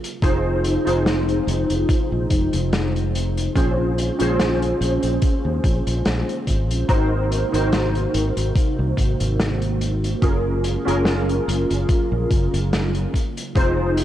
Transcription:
Already playing: C3 F3 G#3 D#4
0.04 closed hi-hat
0.22 F1 D#4 F4 G#4 C5, kick, closed hi-hat
0.64 closed hi-hat
0.85 F1 D#4 F4 G#4 C5, closed hi-hat
1.06 snare, closed hi-hat
1.29 closed hi-hat
1.47 F1, closed hi-hat
1.70 F1, closed hi-hat
1.89 kick, closed hi-hat
2.12 A#1
2.30 F1, kick, closed hi-hat
2.53 F1, closed hi-hat
2.73 snare, closed hi-hat
2.96 closed hi-hat
3.15 closed hi-hat
3.37 closed hi-hat
3.55 A#1 A#3 C#4 F4 G#4 C5, kick, closed hi-hat
3.98 closed hi-hat
4.19 A#1 C#4 F4 G#4 C5, closed hi-hat
4.40 snare, closed hi-hat
4.62 closed hi-hat
4.81 A#1, closed hi-hat
5.03 A#1, closed hi-hat
5.22 kick, closed hi-hat
5.45 D#2
5.64 A#1, kick, closed hi-hat
5.87 A#1, closed hi-hat
6.05 A#1, snare, closed hi-hat
6.29 closed hi-hat
6.47 G#1, kick, closed hi-hat
6.70 A#1, closed hi-hat
6.88 G#1 C3 D#4 F#4 A#4 C5, kick, closed hi-hat
7.32 closed hi-hat
7.52 G#1 D#4 F#4 A#4 C5, closed hi-hat
7.72 snare, closed hi-hat
7.95 closed hi-hat
8.14 G#1, closed hi-hat
8.37 G#1, closed hi-hat
8.56 kick, closed hi-hat
8.79 C2
8.97 G#1, kick, closed hi-hat
9.20 G#1, closed hi-hat
9.40 snare, closed hi-hat
9.62 closed hi-hat
9.81 closed hi-hat
10.04 closed hi-hat
10.22 F#1 C#3 F#3 C#4 F4 G#4 A#4, kick, closed hi-hat
10.64 closed hi-hat
10.85 F#1 C#4 F4 G#4 A#4, closed hi-hat
11.05 snare, closed hi-hat
11.29 closed hi-hat
11.48 F#1, closed hi-hat
11.70 F#1, closed hi-hat
11.89 kick, closed hi-hat
12.12 A#1
12.31 F#1, kick, closed hi-hat
12.54 F#1, closed hi-hat
12.73 snare, closed hi-hat
12.95 closed hi-hat
13.14 F3 G#3 D#4, kick, closed hi-hat
13.37 closed hi-hat
13.55 F1 D#4 F4 G#4 C5, kick, closed hi-hat
13.97 closed hi-hat

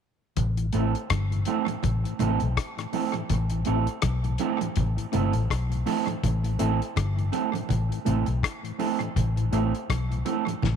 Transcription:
0.37 A1, kick, closed hi-hat, low conga
0.57 A2 E3, closed hi-hat
0.73 A1 A3 C4 E4 A4, closed hi-hat
0.95 closed hi-hat
1.10 G1, kick, cross-stick, closed hi-hat, high conga
1.31 A2 E3, closed hi-hat
1.45 A3 C4 E4 A4, closed hi-hat, high conga
1.67 A2 E3, muted clean electric guitar stroke, closed hi-hat, high conga
1.83 A1, kick, closed hi-hat, low conga
2.04 A2 E3, closed hi-hat
2.19 A1 A3 C4 E4 A4, closed hi-hat, low conga
2.40 B1 A2 E3, closed hi-hat
2.57 kick, cross-stick, closed hi-hat
2.77 A2 E3, cross-stick, closed hi-hat
2.92 A3 C4 E4 A4, open hi-hat, high conga
3.14 A2 E3, closed hi-hat, high conga
3.30 A1, kick, closed hi-hat, low conga
3.50 A2 E3, closed hi-hat
3.65 A1 A3 C4 E4 A4, closed hi-hat
3.87 closed hi-hat
4.02 B1, kick, cross-stick, closed hi-hat, high conga
4.24 A2 E3, closed hi-hat
4.38 A3 C4 E4 A4, closed hi-hat, high conga
4.61 A2 E3, closed hi-hat, high conga
4.76 A1, kick, closed hi-hat, low conga
4.97 A2 E3, closed hi-hat
5.12 G1 A3 C4 E4 A4, closed hi-hat, low conga
5.33 A1 A2 E3, closed hi-hat
5.50 B1, kick, cross-stick, closed hi-hat
5.69 A2 E3, closed hi-hat
5.86 A3 C4 E4 A4, open hi-hat, high conga
6.06 A2 E3, closed hi-hat, high conga
6.24 A1, kick, closed hi-hat, low conga
6.44 A2 E3, closed hi-hat
6.59 A1 A3 C4 E4 A4, closed hi-hat
6.82 closed hi-hat
6.96 G1, kick, cross-stick, closed hi-hat, high conga
7.17 A2 E3, closed hi-hat
7.32 A3 C4 E4 A4, closed hi-hat, high conga
7.53 A2 E3, muted clean electric guitar stroke, closed hi-hat, high conga
7.69 A1, kick, closed hi-hat, low conga
7.90 A2 E3, closed hi-hat
8.05 A1 A3 C4 E4 A4, closed hi-hat, low conga
8.26 B1 A2 E3, closed hi-hat
8.43 kick, cross-stick, closed hi-hat
8.63 A2 E3, closed hi-hat
8.78 A3 C4 E4 A4, open hi-hat, high conga
9.00 A2 E3, closed hi-hat, high conga
9.16 A1, kick, closed hi-hat, low conga
9.36 A2 E3, closed hi-hat
9.51 A1 A3 C4 E4 A4, closed hi-hat
9.75 closed hi-hat
9.90 B1, kick, cross-stick, closed hi-hat, high conga
10.10 A2 E3, closed hi-hat
10.25 A3 C4 E4 A4, closed hi-hat, high conga
10.46 A2 E3, muted clean electric guitar stroke, closed hi-hat, high conga
10.62 A1, kick, snare, high conga, low conga

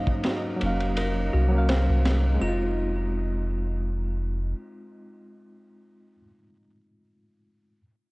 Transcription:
Already playing: F#3 A#3 C#4 D#4 C5 F5
0.07 kick
0.24 F#4, snare, ride
0.56 F#3 A#3
0.61 F1 C#4, ride
0.66 F5
0.80 ride
0.97 A#4, ride
1.33 C2 F#4
1.49 F#3 A#3
1.55 C#4 F5
1.69 C5, snare, ride
1.89 C2
2.05 snare, ride
2.34 G#3
2.39 F1 C4 F4
2.44 D#4
2.48 F4

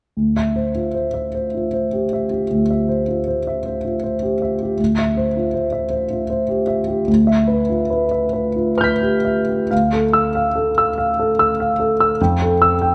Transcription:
0.17 D2
0.36 E5
0.56 C5
0.75 F4
0.94 C5
1.14 E5
1.35 C5
1.54 F4
1.73 C5
1.93 G4
2.13 E5
2.31 G4
2.51 D2
2.70 E5
2.89 C5
3.08 F4
3.28 C5
3.47 E5
3.66 C5
3.85 F4
4.04 C5
4.22 G4
4.42 E5
4.62 G4
4.79 D2
4.99 E5
5.17 C5
5.36 F4
5.54 C5
5.72 E5
5.90 C5
6.10 F4
6.30 C5
6.49 G4
6.67 E5
6.87 G4
7.08 D2
7.27 E5
7.47 B4
7.69 F4
7.90 B4
8.11 E5
8.33 B4
8.56 F4
8.77 B4 F6 G6
8.84 B6
9.02 G4
9.25 E5
9.49 G4
9.71 D2 F5
9.93 A4
10.13 E6
10.35 F5
10.56 A4
10.78 E6
10.98 F5
11.20 A4
11.39 E6
11.60 F5
11.80 A4
12.00 E6
12.21 F2 G5
12.42 A4
12.62 E6
12.82 G5

